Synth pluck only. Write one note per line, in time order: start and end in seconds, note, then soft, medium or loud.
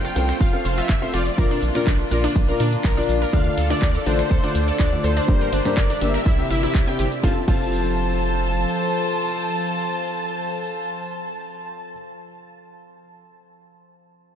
0.05 0.07 F4 loud
0.05 0.07 F5 medium
0.29 0.33 C5 medium
0.29 0.33 C6 medium
0.41 0.43 F4 loud
0.41 0.43 F5 medium
0.65 0.70 C5 medium
0.65 0.70 C6 medium
0.78 0.80 F4 loud
0.78 0.80 F5 medium
1.02 1.06 C5 medium
1.02 1.06 C6 medium
1.14 1.17 F4 loud
1.14 1.17 F5 medium
1.38 1.43 A#4 medium
1.38 1.43 A#5 medium
1.51 1.53 D4 loud
1.51 1.53 D5 medium
1.75 1.80 A#4 medium
1.75 1.80 A#5 medium
1.87 1.90 D4 loud
1.87 1.90 D5 medium
2.11 2.16 A#4 medium
2.11 2.16 A#5 medium
2.24 2.27 D4 loud
2.24 2.27 D5 medium
2.48 2.53 A#4 medium
2.48 2.53 A#5 medium
2.60 2.63 D4 loud
2.60 2.63 D5 medium
2.85 2.89 A#4 medium
2.85 2.89 A#5 medium
2.97 3.00 D4 loud
2.97 3.00 D5 medium
3.22 3.26 A#4 medium
3.22 3.26 A#5 medium
3.33 3.36 D4 loud
3.33 3.36 D5 medium
3.58 3.62 A4 medium
3.58 3.62 A5 medium
3.70 3.73 D4 loud
3.70 3.73 D5 medium
3.95 3.99 A4 medium
3.95 3.99 A5 medium
4.06 4.09 D4 loud
4.06 4.09 D5 medium
4.31 4.36 A4 medium
4.31 4.36 A5 medium
4.44 4.46 D4 medium
4.44 4.46 D5 medium
4.68 4.72 A4 medium
4.68 4.72 A5 medium
4.80 4.82 D4 loud
4.80 4.82 D5 medium
5.04 5.09 A4 medium
5.04 5.09 A5 medium
5.17 5.19 D4 loud
5.17 5.19 D5 medium
5.41 5.45 A#4 medium
5.41 5.45 A#5 medium
5.53 5.56 D4 loud
5.53 5.56 D5 medium
5.77 5.82 A#4 medium
5.77 5.82 A#5 medium
5.90 5.93 D4 loud
5.90 5.93 D5 medium
6.14 6.19 A#4 medium
6.14 6.19 A#5 medium
6.26 6.29 E4 loud
6.26 6.29 E5 medium
6.50 6.57 E4 loud
6.50 6.57 E5 medium
6.63 6.66 E4 loud
6.63 6.66 E5 medium
6.75 6.82 E4 medium
6.75 6.82 E5 medium
6.88 6.94 G5 loud
6.88 6.94 G6 medium
6.99 7.02 G4 medium
6.99 7.02 G5 medium
7.24 7.38 F4 loud
7.48 7.62 F4 medium